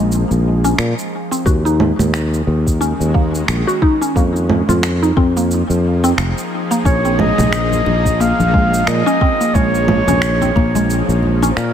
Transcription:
Already playing: A#1 F3 G#3 A#3 D#4 G#4
0.12 shaker
0.31 A#1, shaker
0.64 C#4, shaker
0.78 A#2, finger snap, shaker
0.99 shaker
1.31 C4, shaker
1.46 D#2 D#3 F#4, kick, shaker
1.65 D#4, shaker
1.80 low conga
1.99 D#2 G#3, low conga, shaker
2.14 finger snap, shaker
2.34 shaker
2.47 D#2
2.67 C#4 F#4, kick, shaker
2.81 C#4, shaker
3.00 D#2, shaker
3.14 A#3, kick
3.35 shaker
3.48 A#1, finger snap, shaker
3.67 F#4, shaker
3.82 D#4, kick
4.01 C#4, shaker
4.16 F2 F3 A#3, kick, shaker
4.36 shaker
4.50 low conga
4.69 F2 F4, low conga, shaker
4.83 finger snap, shaker
4.92 A#3
5.02 D#4, shaker
5.17 F2 C4, kick
5.26 G#4
5.37 A#3 D#4, shaker
5.51 shaker
5.70 F2, shaker
6.04 C4, shaker
6.18 F1, finger snap, shaker
6.38 shaker
6.71 A#3, shaker
6.85 A#1 C#4 C#5, kick, shaker
7.05 C4, shaker
7.19 D#5, muted conga, low conga
7.38 A#1, low conga, shaker
7.53 finger snap, shaker
7.72 high conga, shaker
7.86 A#1, muted conga
8.06 kick, high conga, shaker
8.20 A#3 F5, shaker
8.39 A#1, high conga, shaker
8.54 G#3, kick
8.74 shaker
8.87 A#2 D#5, finger snap, shaker
9.06 C#4, shaker
9.21 C4, kick
9.41 A#3, shaker
9.54 A#1 G#3 C#5, kick, shaker
9.75 shaker
9.88 muted conga, low conga
10.07 A#1 C#4, low conga, shaker
10.22 finger snap, shaker
10.41 C4, high conga, shaker
10.56 A#1 A#3, kick, muted conga
10.75 G#3, high conga, shaker
10.90 shaker
11.08 A#1, shaker
11.23 high conga
11.42 C#4, high conga, shaker
11.51 C5
11.56 A#2 A#4, finger snap, shaker

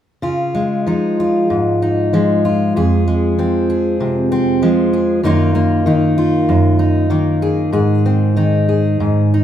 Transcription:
0.22 C#3 F4
0.55 G#3
0.87 F3 D#4
1.20 F4
1.50 G#2
1.82 D#4
2.13 F3 G#3
2.45 F4
2.76 F2 G#4
3.08 G#3
3.39 F3 C4
3.70 G#4
4.00 C3
4.32 C4
4.62 F3 G#3
4.93 G#4
5.23 F#2 D#3 A#3 D#4 F4
5.55 A#3
5.86 D#3 D#4
6.18 F4
6.49 F#2
6.79 D#4
7.10 D#3 A#3
7.42 G#4
7.72 G#2 G#4
8.06 C4
8.36 D#3 D#4
8.69 G#4
9.00 G#2
9.34 D#4

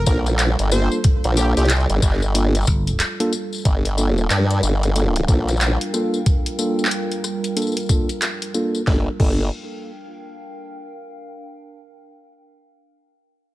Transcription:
Already playing: G3 F4 A4
0.06 A#1 A#3 D4 F4 A4 A#4, kick, tambourine
0.26 cross-stick, closed hi-hat, tambourine
0.39 clap, closed hi-hat, tambourine
0.59 G1, closed hi-hat, tambourine
0.72 A#3 D4 F4 A4 C5, tambourine
0.92 tambourine
1.04 kick, closed hi-hat, tambourine
1.24 A#1, closed hi-hat, tambourine
1.37 A#3 D4 F4 G4 A4, tambourine
1.57 C2 G4, closed hi-hat, tambourine
1.59 closed hi-hat
1.65 closed hi-hat
1.70 clap, closed hi-hat, tambourine
1.76 closed hi-hat
1.80 closed hi-hat
1.90 G1, closed hi-hat, tambourine
2.02 G1, kick, cross-stick, clap, tambourine
2.06 clap
2.09 clap
2.12 clap
2.19 clap, tambourine
2.35 A#3 D4 F4 A4, closed hi-hat, tambourine
2.55 closed hi-hat, tambourine
2.56 tambourine
2.61 tambourine
2.63 tambourine
2.65 tambourine
2.67 G1, kick, tambourine
2.87 closed hi-hat, tambourine
3.00 cross-stick, clap, closed hi-hat, tambourine
3.20 A#3 D4 F4 A4, closed hi-hat, tambourine
3.33 tambourine
3.53 tambourine
3.54 tambourine
3.56 tambourine
3.58 tambourine
3.60 tambourine
3.62 tambourine
3.63 closed hi-hat, tambourine
3.65 G1 G3 D4 F4 A#4, kick, tambourine
3.85 closed hi-hat, tambourine
3.96 A#3 D4 F4 A4 F5, tambourine
4.07 A#4
4.18 tambourine
4.30 G2, clap, closed hi-hat, tambourine
4.51 closed hi-hat, tambourine
4.63 G1 G5, tambourine
4.83 closed hi-hat, tambourine
4.96 A#3 D4 F4 A4, closed hi-hat, tambourine
5.16 closed hi-hat, tambourine
5.28 A#1 A#3 D4 F4 A4, kick, tambourine
5.48 cross-stick, closed hi-hat, tambourine
5.50 tambourine
5.57 tambourine
5.61 clap, closed hi-hat, tambourine
5.81 closed hi-hat
5.94 A#3 D4 F4 A4, cross-stick, tambourine
6.14 tambourine
6.26 kick, closed hi-hat, tambourine
6.46 closed hi-hat, tambourine
6.59 A#3 D4 F4 A4, tambourine
6.79 tambourine
6.85 clap
6.91 closed hi-hat, tambourine
7.12 closed hi-hat, tambourine
7.24 cross-stick, tambourine
7.44 closed hi-hat, tambourine
7.57 A#3 D4 F4 A4, closed hi-hat, tambourine
7.62 tambourine
7.67 tambourine
7.72 tambourine
7.77 closed hi-hat, tambourine
7.80 tambourine
7.83 tambourine
7.86 tambourine
7.89 A#3 D4 F4 A4, kick, tambourine
8.09 closed hi-hat, tambourine
8.22 cross-stick, clap, closed hi-hat, tambourine
8.42 closed hi-hat, tambourine
8.54 A#3 D4 F4 A4, tambourine
8.75 tambourine
8.87 G1 A#3 D4 F4 A4, kick, snare
8.99 A#4
9.10 F5
9.17 G1 A#3 D4 F4 A4 G5, kick, crash

